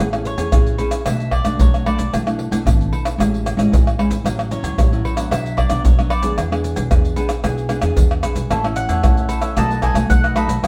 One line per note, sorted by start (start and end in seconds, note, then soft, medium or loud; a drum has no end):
0.00 0.33 A1 medium
0.00 0.50 A3 medium
0.00 0.08 E4 medium
0.00 0.08 G#4 medium
0.13 0.35 C#4 medium
0.13 0.35 E4 medium
0.13 0.36 G#4 medium
0.13 pandeiro soft
0.13 tamborim medium
0.13 maracas soft
0.25 1.02 C#5 medium
0.25 pandeiro medium
0.25 maracas medium
0.37 0.50 E2 medium
0.37 0.48 C#4 medium
0.37 0.48 E4 medium
0.37 0.48 G#4 medium
0.37 pandeiro medium
0.37 low agogo medium
0.37 maracas medium
0.52 0.75 A1 medium
0.52 1.04 E3 medium
0.52 0.75 C#4 medium
0.52 0.75 E4 medium
0.52 0.76 G#4 medium
0.52 pandeiro medium
0.52 tamborim medium
0.52 maracas medium
0.52 surdo loud
0.67 pandeiro soft
0.67 maracas soft
0.78 1.02 C#4 medium
0.78 1.02 E4 medium
0.78 1.02 G#4 medium
0.78 pandeiro medium
0.78 high agogo medium
0.78 maracas medium
0.91 pandeiro medium
0.91 tamborim medium
0.91 maracas medium
1.06 1.40 B1 loud
1.06 1.57 B2 medium
1.06 1.32 A3 medium
1.06 1.32 D4 medium
1.06 1.32 F#4 medium
1.06 1.32 E5 medium
1.06 pandeiro medium
1.06 tamborim medium
1.06 low agogo medium
1.06 maracas medium
1.06 surdo medium
1.20 pandeiro soft
1.20 maracas soft
1.31 1.58 D5 medium
1.31 pandeiro medium
1.31 tamborim medium
1.31 low agogo medium
1.31 surdo medium
1.45 1.57 B1 medium
1.45 1.81 A3 medium
1.45 1.82 D4 medium
1.45 1.82 F#4 medium
1.45 pandeiro medium
1.45 tamborim medium
1.45 maracas medium
1.59 1.82 B1 medium
1.59 2.10 F#3 medium
1.59 1.86 C#5 medium
1.59 pandeiro medium
1.59 maracas medium
1.59 surdo loud
1.74 pandeiro soft
1.74 tamborim medium
1.74 maracas soft
1.86 2.03 A3 medium
1.86 2.03 D4 medium
1.86 2.03 F#4 medium
1.86 2.12 D5 medium
1.86 pandeiro medium
1.86 tamborim medium
1.86 high agogo medium
1.99 2.10 B1 medium
1.99 pandeiro medium
1.99 maracas medium
2.12 2.47 B1 medium
2.12 2.63 B2 medium
2.12 2.21 A3 soft
2.12 2.22 D4 medium
2.12 2.22 E4 medium
2.12 pandeiro medium
2.12 tamborim medium
2.12 low agogo medium
2.12 maracas medium
2.12 surdo medium
2.26 2.48 A3 medium
2.26 2.49 D4 medium
2.26 2.49 E4 medium
2.26 pandeiro soft
2.26 tamborim medium
2.26 maracas soft
2.39 pandeiro medium
2.51 2.63 B1 medium
2.51 2.61 A3 medium
2.51 2.61 D4 medium
2.51 2.61 E4 medium
2.51 pandeiro medium
2.51 low agogo medium
2.51 maracas medium
2.65 2.88 G#1 loud
2.65 3.16 B2 medium
2.65 3.14 A3 medium
2.65 3.15 D4 medium
2.65 3.15 E4 medium
2.65 pandeiro medium
2.65 tamborim medium
2.65 maracas medium
2.65 surdo loud
2.81 pandeiro soft
2.81 maracas soft
2.93 pandeiro medium
2.93 high agogo medium
3.05 pandeiro medium
3.05 tamborim medium
3.05 maracas medium
3.18 3.52 A1 loud
3.18 3.69 A2 medium
3.18 3.54 G#3 medium
3.18 3.54 C#4 medium
3.18 3.55 E4 medium
3.18 pandeiro medium
3.18 tamborim medium
3.18 low agogo medium
3.18 maracas medium
3.18 surdo medium
3.34 pandeiro soft
3.34 maracas soft
3.46 pandeiro medium
3.46 tamborim medium
3.46 low agogo medium
3.46 maracas medium
3.57 3.69 A1 loud
3.57 3.94 G#3 medium
3.57 3.94 C#4 medium
3.57 3.94 E4 medium
3.57 pandeiro medium
3.57 tamborim medium
3.57 maracas medium
3.72 3.95 A1 medium
3.72 4.23 E3 medium
3.72 pandeiro medium
3.72 maracas medium
3.72 surdo loud
3.87 pandeiro soft
3.87 tamborim medium
3.87 maracas soft
3.98 4.16 G#3 medium
3.98 4.16 C#4 medium
3.98 4.16 E4 medium
3.98 pandeiro medium
3.98 tamborim medium
3.98 high agogo medium
4.10 4.22 A1 medium
4.10 pandeiro medium
4.10 maracas medium
4.24 4.59 A1 loud
4.24 4.76 A2 soft
4.24 4.48 F#3 medium
4.24 4.48 C#4 medium
4.24 4.48 E4 medium
4.24 pandeiro medium
4.24 tamborim medium
4.24 low agogo medium
4.24 maracas medium
4.24 surdo medium
4.39 pandeiro soft
4.39 tamborim medium
4.39 maracas soft
4.51 4.87 F#3 medium
4.51 4.87 C#4 medium
4.51 4.87 E4 medium
4.51 5.27 C#5 medium
4.51 pandeiro medium
4.51 maracas medium
4.63 4.75 C#2 medium
4.63 pandeiro medium
4.63 low agogo medium
4.63 maracas medium
4.78 5.01 A1 loud
4.78 5.29 A2 medium
4.78 pandeiro medium
4.78 tamborim medium
4.78 maracas medium
4.78 surdo loud
4.92 5.14 F#3 medium
4.92 5.14 C#4 medium
4.92 5.15 E4 medium
4.92 pandeiro soft
4.92 maracas soft
5.05 pandeiro medium
5.05 high agogo medium
5.16 5.66 F#3 medium
5.16 5.66 B3 medium
5.16 5.67 D4 medium
5.16 pandeiro medium
5.16 tamborim medium
5.16 maracas medium
5.31 5.65 B1 loud
5.31 5.82 B2 medium
5.31 5.57 E5 medium
5.31 pandeiro medium
5.31 tamborim medium
5.31 low agogo medium
5.31 maracas medium
5.31 surdo medium
5.46 pandeiro soft
5.46 maracas soft
5.57 5.83 D5 medium
5.57 pandeiro medium
5.57 tamborim medium
5.57 low agogo medium
5.57 surdo medium
5.70 5.82 B1 medium
5.70 5.93 F#3 medium
5.70 5.93 B3 medium
5.70 5.93 D4 medium
5.70 pandeiro medium
5.70 tamborim medium
5.70 maracas medium
5.84 6.07 B1 medium
5.84 6.35 F#2 medium
5.84 6.10 C#5 medium
5.84 pandeiro medium
5.84 maracas medium
5.84 surdo loud
5.99 6.21 F#3 medium
5.99 6.21 B3 medium
5.99 6.21 D4 medium
5.99 pandeiro soft
5.99 tamborim medium
5.99 maracas soft
6.10 6.37 D5 medium
6.10 pandeiro medium
6.10 tamborim medium
6.10 high agogo medium
6.22 6.35 D2 medium
6.22 6.50 B3 medium
6.22 6.51 D4 medium
6.22 6.51 G#4 medium
6.22 pandeiro medium
6.22 maracas medium
6.38 6.72 E2 medium
6.38 6.89 E3 medium
6.38 pandeiro medium
6.38 tamborim medium
6.38 low agogo medium
6.38 maracas medium
6.38 surdo medium
6.51 6.87 B3 medium
6.51 6.87 D4 medium
6.51 6.87 G#4 medium
6.51 pandeiro soft
6.51 tamborim medium
6.51 maracas soft
6.64 pandeiro medium
6.64 maracas medium
6.76 6.88 B1 medium
6.76 pandeiro medium
6.76 low agogo medium
6.76 maracas medium
6.91 7.14 E2 loud
6.91 7.42 B2 medium
6.91 7.13 B3 medium
6.91 7.13 D4 medium
6.91 7.14 G#4 medium
6.91 pandeiro medium
6.91 tamborim medium
6.91 maracas medium
6.91 surdo loud
7.05 pandeiro soft
7.05 maracas soft
7.16 7.33 B3 medium
7.16 7.33 D4 medium
7.16 7.33 G#4 medium
7.16 pandeiro medium
7.16 high agogo medium
7.16 maracas medium
7.29 pandeiro medium
7.29 tamborim medium
7.29 maracas medium
7.44 7.78 B1 loud
7.44 7.95 E3 medium
7.44 7.67 B3 medium
7.44 7.67 D4 soft
7.44 7.67 G#4 medium
7.44 pandeiro medium
7.44 tamborim medium
7.44 low agogo medium
7.44 maracas medium
7.44 surdo medium
7.58 pandeiro soft
7.58 maracas soft
7.69 7.78 B3 medium
7.69 7.79 D4 medium
7.69 7.79 G#4 medium
7.69 pandeiro medium
7.69 tamborim medium
7.69 low agogo medium
7.69 maracas medium
7.82 7.94 E2 medium
7.82 8.19 B3 medium
7.82 8.19 D4 medium
7.82 8.19 G#4 medium
7.82 pandeiro medium
7.82 tamborim medium
7.82 maracas medium
7.97 8.20 E2 medium
7.97 8.48 B2 medium
7.97 pandeiro medium
7.97 maracas medium
7.97 surdo loud
8.11 pandeiro soft
8.11 tamborim medium
8.11 maracas soft
8.23 8.48 B3 medium
8.23 8.48 D4 medium
8.23 8.49 G#4 medium
8.23 pandeiro medium
8.23 tamborim medium
8.23 high agogo medium
8.23 maracas medium
8.35 8.48 B1 medium
8.35 pandeiro medium
8.35 maracas medium
8.50 8.85 A1 medium
8.50 9.02 A2 medium
8.50 8.59 A3 medium
8.50 8.59 C#4 medium
8.50 8.63 E4 medium
8.50 8.59 E4 medium
8.50 8.63 A4 medium
8.50 8.63 C#5 medium
8.50 8.63 E5 medium
8.50 pandeiro medium
8.50 tamborim medium
8.50 low agogo medium
8.50 maracas medium
8.50 surdo medium
8.64 9.00 A3 medium
8.64 9.00 C#4 medium
8.64 9.00 E4 medium
8.64 8.76 A4 soft
8.64 8.76 C#5 soft
8.64 8.76 E5 soft
8.64 pandeiro soft
8.64 tamborim medium
8.64 maracas soft
8.76 9.53 F#5 loud
8.76 muted cavaquinho stroke soft
8.76 pandeiro medium
8.76 maracas medium
8.89 9.01 E2 medium
8.89 9.16 A4 medium
8.89 9.16 C#5 medium
8.89 9.15 E5 medium
8.89 pandeiro medium
8.89 low agogo medium
8.89 maracas medium
9.03 9.26 A1 medium
9.03 9.54 E3 medium
9.03 9.52 A3 medium
9.03 9.53 C#4 medium
9.03 9.53 E4 medium
9.03 pandeiro medium
9.03 tamborim medium
9.03 maracas medium
9.03 surdo loud
9.17 9.30 A4 soft
9.17 9.30 C#5 soft
9.17 9.30 E5 soft
9.17 pandeiro soft
9.17 maracas soft
9.29 9.42 E4 medium
9.29 9.42 A4 soft
9.29 9.41 C#5 soft
9.29 9.40 E5 medium
9.29 pandeiro medium
9.29 high agogo medium
9.29 maracas medium
9.42 9.56 A4 medium
9.42 9.55 C#5 medium
9.42 9.55 E5 medium
9.42 pandeiro medium
9.42 tamborim medium
9.42 maracas medium
9.56 9.91 B1 loud
9.56 10.07 B2 medium
9.56 9.82 A3 medium
9.56 9.69 D#4 medium
9.56 9.82 D#4 medium
9.56 9.82 F#4 medium
9.56 9.70 A4 medium
9.56 9.70 B4 medium
9.56 9.69 D#5 medium
9.56 9.82 A5 medium
9.56 pandeiro medium
9.56 tamborim medium
9.56 low agogo medium
9.56 maracas loud
9.56 surdo medium
9.70 9.81 A4 soft
9.70 9.82 B4 soft
9.70 9.82 D#5 medium
9.70 pandeiro soft
9.70 maracas soft
9.82 9.94 D#4 medium
9.82 9.95 A4 medium
9.82 9.95 B4 medium
9.82 9.96 D#5 medium
9.82 10.09 G#5 medium
9.82 pandeiro medium
9.82 tamborim medium
9.82 low agogo medium
9.82 maracas medium
9.82 surdo medium
9.94 10.07 B1 medium
9.94 10.32 A3 medium
9.94 10.32 D#4 medium
9.94 10.32 F#4 medium
9.94 muted cavaquinho stroke soft
9.94 pandeiro medium
9.94 tamborim medium
9.94 maracas medium
10.10 10.32 B1 medium
10.10 10.60 F#3 medium
10.10 10.36 F#5 medium
10.10 pandeiro medium
10.10 maracas medium
10.10 surdo loud
10.24 10.35 A4 soft
10.24 10.36 B4 soft
10.24 10.36 D#5 medium
10.24 pandeiro soft
10.24 tamborim medium
10.24 maracas soft
10.35 10.53 A3 medium
10.35 10.49 D#4 medium
10.35 10.54 D#4 medium
10.35 10.54 F#4 medium
10.35 10.49 A4 medium
10.35 10.48 B4 medium
10.35 10.47 D#5 medium
10.35 10.53 B5 medium
10.35 pandeiro medium
10.35 tamborim medium
10.35 high agogo medium
10.35 maracas medium
10.48 10.60 B1 medium
10.48 10.62 A4 soft
10.48 10.62 B4 soft
10.48 10.61 D#5 medium
10.48 pandeiro medium
10.48 maracas medium
10.63 10.67 B1 medium
10.63 10.67 B2 medium
10.63 10.67 G#3 medium
10.63 10.67 E4 medium
10.63 10.67 F#4 medium
10.63 10.67 G#4 medium
10.63 pandeiro medium
10.63 tamborim medium
10.63 low agogo medium
10.63 maracas medium
10.63 surdo medium